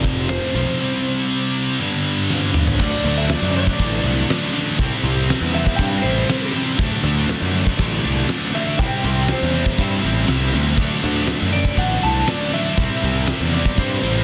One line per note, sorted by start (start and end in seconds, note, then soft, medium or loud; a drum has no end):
0.00 0.39 F1 loud
0.00 0.78 F2 medium
0.00 0.78 C3 medium
0.00 0.79 F3 medium
0.00 0.79 A3 medium
0.00 0.79 C4 medium
0.00 0.29 D5 medium
0.04 kick medium
0.04 closed hi-hat medium
0.29 1.76 C5 medium
0.29 snare loud
0.29 closed hi-hat medium
0.54 0.65 B1 medium
0.54 0.79 C3 medium
0.54 0.79 F3 loud
0.54 closed hi-hat medium
0.58 0.80 F2 medium
0.79 1.78 C3 medium
0.79 1.79 G3 medium
0.79 1.79 C4 medium
0.79 1.79 E4 medium
1.80 2.78 G2 medium
1.80 2.79 D3 medium
1.80 2.79 G3 medium
1.80 2.79 B3 medium
1.80 2.80 D4 loud
2.30 snare medium
2.54 mid tom medium
2.67 floor tom medium
2.79 2.90 D2 medium
2.79 3.04 D3 medium
2.79 3.04 F#3 medium
2.79 3.04 A3 loud
2.79 3.04 D4 loud
2.79 3.15 D5 medium
2.79 kick loud
2.79 crash loud
3.04 3.34 D2 loud
3.04 3.28 D3 medium
3.04 3.28 F#3 medium
3.04 3.29 A3 medium
3.04 3.29 D4 loud
3.04 open hi-hat medium
3.18 3.31 E5 loud
3.29 3.54 D3 loud
3.29 3.55 F#3 medium
3.29 3.55 A3 loud
3.29 3.55 D4 loud
3.29 3.54 D5 loud
3.29 snare loud
3.29 open hi-hat loud
3.42 3.71 F#2 medium
3.55 3.78 D3 medium
3.55 3.78 F#3 medium
3.55 3.79 A3 medium
3.55 3.79 D4 loud
3.55 4.51 D5 loud
3.55 open hi-hat medium
3.67 kick medium
3.79 3.99 A1 loud
3.79 4.02 D3 loud
3.79 4.03 F#3 loud
3.79 4.03 A3 loud
3.79 4.03 D4 loud
3.79 kick medium
3.79 open hi-hat medium
4.03 4.23 C2 medium
4.03 4.26 D3 medium
4.03 4.27 F#3 medium
4.03 4.27 A3 medium
4.03 4.28 D4 loud
4.03 open hi-hat medium
4.28 4.52 D3 medium
4.28 4.53 F#3 loud
4.28 4.53 A3 loud
4.28 4.53 D4 loud
4.28 snare loud
4.28 open hi-hat medium
4.53 4.77 D3 loud
4.53 4.78 F#3 medium
4.53 4.78 A3 medium
4.53 4.78 D4 loud
4.53 open hi-hat medium
4.79 4.89 C2 loud
4.79 5.02 C3 loud
4.79 5.03 G3 medium
4.79 5.03 C4 loud
4.79 5.04 E4 loud
4.79 kick loud
4.79 open hi-hat medium
5.03 5.33 C2 loud
5.03 5.27 C3 medium
5.03 5.27 G3 medium
5.03 5.28 C4 medium
5.03 5.29 E4 loud
5.03 open hi-hat medium
5.28 5.52 C3 loud
5.28 5.52 G3 medium
5.28 5.53 C4 loud
5.28 5.54 E4 loud
5.28 snare loud
5.28 open hi-hat medium
5.41 5.71 E2 medium
5.53 5.77 C3 medium
5.53 5.77 G3 medium
5.53 5.77 C4 loud
5.53 5.78 E4 medium
5.53 5.76 E5 loud
5.53 open hi-hat medium
5.66 kick loud
5.76 5.99 G2 loud
5.76 6.02 C3 medium
5.76 6.02 G3 medium
5.76 6.02 C4 loud
5.76 6.03 E4 loud
5.76 6.03 G5 loud
5.76 kick medium
5.76 open hi-hat medium
6.02 6.23 A1 medium
6.02 6.25 C3 medium
6.02 6.26 G3 medium
6.02 6.26 C4 loud
6.02 6.27 E4 loud
6.02 6.49 C5 medium
6.02 open hi-hat medium
6.26 6.50 C3 loud
6.26 6.51 G3 loud
6.26 6.52 C4 loud
6.26 6.52 E4 loud
6.26 snare loud
6.26 open hi-hat medium
6.52 6.76 C3 loud
6.52 6.77 G3 medium
6.52 6.77 C4 loud
6.52 6.77 E4 loud
6.52 open hi-hat medium
6.56 6.79 C3 loud
6.56 6.79 C4 loud
6.76 6.89 D2 medium
6.76 7.01 D3 medium
6.76 7.01 F#3 loud
6.76 7.02 A3 loud
6.76 7.02 D4 loud
6.76 kick loud
6.76 open hi-hat medium
6.81 7.06 D4 loud
7.02 7.33 D2 loud
7.02 7.26 D3 loud
7.02 7.26 F#3 medium
7.02 7.27 A3 medium
7.02 7.27 D4 loud
7.02 open hi-hat medium
7.06 7.29 D3 medium
7.27 7.52 D3 medium
7.27 7.52 F#3 loud
7.27 7.52 A3 loud
7.27 7.53 D4 loud
7.27 snare loud
7.27 open hi-hat loud
7.42 7.70 F#2 medium
7.53 7.78 D3 medium
7.53 7.79 F#3 medium
7.53 7.79 A3 medium
7.53 7.79 D4 loud
7.53 open hi-hat medium
7.67 kick loud
7.78 7.98 A1 loud
7.78 8.03 D3 medium
7.78 8.04 F#3 medium
7.78 8.04 A3 medium
7.78 8.05 D4 loud
7.78 kick medium
7.78 open hi-hat medium
8.04 8.24 C2 medium
8.04 8.28 D3 medium
8.04 8.28 F#3 medium
8.04 8.28 A3 medium
8.04 8.28 D4 loud
8.04 open hi-hat medium
8.29 8.52 D3 medium
8.29 8.52 F#3 loud
8.29 8.53 A3 loud
8.29 8.52 D4 loud
8.29 snare loud
8.29 open hi-hat medium
8.53 8.77 D3 medium
8.53 8.77 F#3 medium
8.53 8.77 A3 medium
8.53 8.77 D4 loud
8.53 8.79 E5 loud
8.53 open hi-hat medium
8.78 8.89 C2 loud
8.78 9.02 C3 medium
8.78 9.02 G3 loud
8.78 9.03 C4 loud
8.78 9.04 E4 loud
8.78 9.30 G5 loud
8.78 kick loud
8.78 open hi-hat medium
9.03 9.33 C2 loud
9.03 9.26 C3 medium
9.03 9.27 G3 medium
9.03 9.27 C4 medium
9.03 9.28 E4 loud
9.03 open hi-hat medium
9.28 9.52 C3 medium
9.28 9.53 G3 medium
9.28 9.53 C4 loud
9.28 9.54 E4 loud
9.28 snare loud
9.28 open hi-hat medium
9.32 9.82 C5 medium
9.42 9.71 E2 medium
9.53 9.76 C3 medium
9.53 9.75 G3 medium
9.53 9.77 C4 medium
9.53 9.77 E4 medium
9.53 open hi-hat medium
9.66 kick medium
9.77 9.98 G2 loud
9.77 10.02 C3 medium
9.77 10.02 G3 loud
9.77 10.02 C4 loud
9.77 10.03 E4 loud
9.77 kick loud
9.77 open hi-hat medium
9.81 10.26 E5 medium
10.03 10.23 A1 medium
10.03 10.27 C3 medium
10.03 10.27 G3 loud
10.03 10.27 C4 loud
10.03 10.28 E4 medium
10.03 open hi-hat medium
10.28 10.51 C2 medium
10.28 10.52 C3 loud
10.28 10.52 G3 loud
10.28 10.53 C4 medium
10.28 10.54 E4 loud
10.28 snare loud
10.28 open hi-hat medium
10.52 10.76 D2 medium
10.52 10.76 C3 medium
10.52 10.77 G3 medium
10.52 10.77 C4 medium
10.52 10.78 E4 loud
10.52 open hi-hat medium
10.77 10.88 D2 loud
10.77 11.00 D3 medium
10.77 11.00 F#3 medium
10.77 11.00 A3 loud
10.77 11.01 D4 loud
10.77 kick loud
10.77 crash loud
11.01 11.32 D2 loud
11.01 11.24 D3 medium
11.01 11.26 F#3 medium
11.01 11.26 A3 medium
11.01 11.26 D4 loud
11.01 open hi-hat medium
11.15 snare soft
11.26 11.50 D3 medium
11.26 11.50 F#3 loud
11.26 11.50 A3 loud
11.26 11.51 D4 loud
11.26 snare loud
11.26 open hi-hat loud
11.42 11.70 F#2 medium
11.51 11.75 D3 medium
11.51 11.75 F#3 medium
11.51 11.75 A3 loud
11.51 11.76 D4 medium
11.51 11.78 D5 medium
11.51 open hi-hat medium
11.65 kick loud
11.76 11.97 A1 loud
11.76 12.00 D3 loud
11.76 12.01 F#3 loud
11.76 12.01 A3 loud
11.76 12.02 D4 loud
11.76 12.03 F#5 medium
11.76 kick loud
11.76 open hi-hat medium
12.01 12.23 C2 medium
12.01 12.25 D3 medium
12.01 12.26 F#3 loud
12.01 12.26 A3 medium
12.01 12.27 D4 medium
12.01 12.26 A5 loud
12.01 open hi-hat medium
12.27 12.52 D3 medium
12.27 12.52 F#3 medium
12.27 12.52 A3 loud
12.27 12.53 D4 loud
12.27 12.53 D5 medium
12.27 snare loud
12.27 open hi-hat medium
12.53 12.76 D3 medium
12.53 12.76 F#3 medium
12.53 12.77 A3 medium
12.53 12.77 D4 medium
12.53 13.49 E5 loud
12.53 open hi-hat medium
12.78 12.87 C2 loud
12.78 13.01 C3 medium
12.78 13.02 G3 medium
12.78 13.03 C4 loud
12.78 13.04 E4 loud
12.78 kick loud
12.78 open hi-hat medium
13.02 13.32 C2 loud
13.02 13.26 C3 medium
13.02 13.27 G3 medium
13.02 13.26 C4 medium
13.02 13.28 E4 medium
13.02 open hi-hat medium
13.27 13.52 C3 medium
13.27 13.52 G3 loud
13.27 13.53 C4 loud
13.27 13.54 E4 loud
13.27 snare loud
13.27 open hi-hat medium
13.40 13.69 E2 medium
13.53 13.77 C3 loud
13.53 13.77 G3 medium
13.53 13.78 C4 loud
13.53 13.79 E4 medium
13.53 13.78 D5 medium
13.53 open hi-hat medium
13.66 kick medium
13.78 13.97 G2 medium
13.78 14.01 C3 loud
13.78 14.02 G3 loud
13.78 14.02 C4 loud
13.78 14.03 E4 loud
13.78 14.24 C5 medium
13.78 kick medium
13.78 open hi-hat medium
14.02 14.22 A1 medium
14.02 14.24 C3 medium
14.02 14.24 G3 medium
14.02 14.24 C4 loud
14.02 14.24 E4 medium
14.02 open hi-hat medium